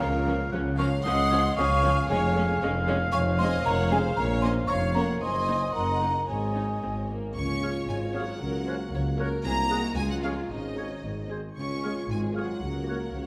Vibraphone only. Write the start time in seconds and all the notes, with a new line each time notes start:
0.00 F4
0.79 C#5
1.05 D#5
1.58 C#5
2.09 G#4
3.12 C#5
3.39 C5
3.64 A#4
3.90 G#4
4.17 A#4
4.42 C5
4.68 C#5
4.94 A#4
5.20 C5
5.73 A#4
6.29 G#4